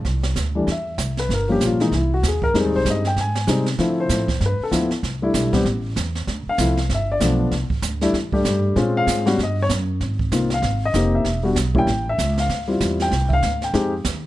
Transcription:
0.05 C2, brush sweep, kick, snare
0.23 snare
0.36 D2, kick, snare, hi-hat pedal
0.55 E3 G3 A3 D4
0.67 E2, brush sweep, kick, snare
0.71 E5
0.98 C2, kick, snare, hi-hat pedal
1.17 B4, snare
1.29 G1, brush sweep, kick, snare
1.34 A#4
1.48 F3 G3 A#3 C#4 G4
1.60 A#1, kick, snare, hi-hat pedal
1.65 F4
1.80 E3 G#3 A#3 D#4, snare
1.91 C2 E4, brush sweep, kick, snare
2.14 F#4
2.23 D#2, kick, snare, hi-hat pedal
2.28 G#4
2.42 A#4, kick
2.54 F2 G3 G#3 C4 D#4, brush sweep, kick, snare
2.59 G#4
2.65 D#2
2.75 C2 C5
2.85 G2, kick, snare, hi-hat pedal
2.90 D#5
3.05 G5, snare
3.16 G#2, brush sweep, kick, snare
3.21 G#5
3.35 snare
3.47 C3 G3 G#3 C4 D#4, kick, snare, hi-hat pedal
3.66 snare
3.78 D3 F3 A3 C4 E4, brush sweep, kick, snare
4.00 C5
4.09 A2, kick, snare, hi-hat pedal
4.28 kick, snare
4.41 G2, brush sweep, kick, snare
4.46 B4
4.60 A4, muted upright bass stroke
4.71 D2 F3 A3 B3 E4, kick, snare, hi-hat pedal
4.91 snare
5.03 C2, brush sweep, kick, snare
5.22 G3 A3 D4 E4
5.34 B1, kick, snare, hi-hat pedal
5.53 G3 B3 C4 G4, kick, snare
5.65 A1, brush sweep, kick, snare
5.96 E2, kick, snare, hi-hat pedal
6.15 snare
6.27 D2, brush sweep, kick, snare
6.46 F5, muted upright bass stroke
6.58 C2 F3 A3 C4 E4, kick, snare, hi-hat pedal
6.77 snare
6.89 G1, brush sweep, kick, snare
6.95 E5
7.12 D5
7.20 B1 F3 A3 B3 D4, kick, snare, hi-hat pedal
7.51 C2, brush sweep, kick, snare
7.70 muted upright bass stroke, kick
7.82 D2, kick, snare, hi-hat pedal
8.01 G3 A3 D4 E4, snare
8.13 E2, brush sweep, kick, snare
8.32 G3 A3 D4 G4, kick
8.45 G2, kick, snare, hi-hat pedal
8.76 A#2 G#3 C4 C#4 F4, brush sweep, kick, snare
8.97 F5
9.07 G#2, kick, snare, hi-hat pedal
9.26 G3 B3 C#4 F#4, snare
9.38 G2, brush sweep, kick, snare
9.43 D#5
9.62 C#5
9.69 F#2, kick, snare, hi-hat pedal
10.01 G#1, brush sweep, kick, snare
10.19 kick
10.32 C2 A#3 C4 D#4 F4, kick, snare, hi-hat pedal
10.50 F5, snare
10.62 G#1, brush sweep, kick, snare
10.85 D#5
10.94 F1 A#3 C4 D#4 G4, kick, snare, hi-hat pedal
11.15 E5
11.24 E1, brush sweep, kick, snare
11.43 G3 B3 D4 F#4
11.56 B1, kick, snare, hi-hat pedal
11.74 G3 A#3 C#4 E4, kick
11.78 G5
11.87 A1, brush sweep, kick, snare
12.09 E5
12.18 C#2, kick, snare, hi-hat pedal
12.37 F5, snare
12.49 D2, brush sweep, kick, snare
12.68 G3 C4 E4 F4
12.80 E2, kick, snare, hi-hat pedal
13.00 G5, snare
13.11 C2, brush sweep, kick, snare
13.29 E5, kick
13.33 F5
13.42 D2, snare, hi-hat pedal
13.62 G5, snare
13.74 F2 G#3 C4 D#4 G4, brush sweep, kick, snare
14.05 D#2, kick, snare, hi-hat pedal

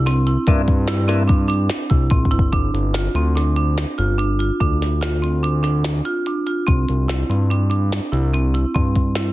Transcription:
Already playing: C2
0.06 C4, snare, closed hi-hat, shaker
0.27 E4, closed hi-hat
0.47 G2 A#3 C4 D4 E4, kick, closed hi-hat, shaker
0.68 kick, closed hi-hat
0.88 E4, snare, closed hi-hat
1.08 A#3 C4 D4 E4, snare, closed hi-hat, shaker
1.28 D4, kick, closed hi-hat, shaker
1.48 D4, closed hi-hat, shaker
1.70 snare, closed hi-hat
1.90 C2 E4, kick, closed hi-hat
2.10 A#1 C4, kick, closed hi-hat, shaker
2.25 kick
2.31 G1 E4, closed hi-hat
2.39 kick
2.53 G1 D4, kick, closed hi-hat
2.74 G1, closed hi-hat
2.94 F4, snare, closed hi-hat
3.15 D2 C4, closed hi-hat
3.36 D4, snare, closed hi-hat
3.56 D4, closed hi-hat
3.78 snare, closed hi-hat
3.98 G1 F4, closed hi-hat
4.18 D4, closed hi-hat
4.39 F4, closed hi-hat
4.60 D2 D4, kick, closed hi-hat
4.82 snare, closed hi-hat
5.01 F4, snare, closed hi-hat
5.22 C4, closed hi-hat
5.43 D4, closed hi-hat
5.63 D4, snare, closed hi-hat
5.84 snare, closed hi-hat
6.05 F4, closed hi-hat
6.26 D4, closed hi-hat
6.47 F4, closed hi-hat
6.67 C2 C4, kick, closed hi-hat
6.89 C2, closed hi-hat
7.08 E4, snare, closed hi-hat
7.29 G2 C4, closed hi-hat
7.50 D4, closed hi-hat
7.70 D4, closed hi-hat
7.92 snare, closed hi-hat
8.12 C2 E4, closed hi-hat
8.34 C4, closed hi-hat
8.54 E4, closed hi-hat
8.74 G2 C4, kick, closed hi-hat
8.96 kick, closed hi-hat
9.15 E4, snare, closed hi-hat

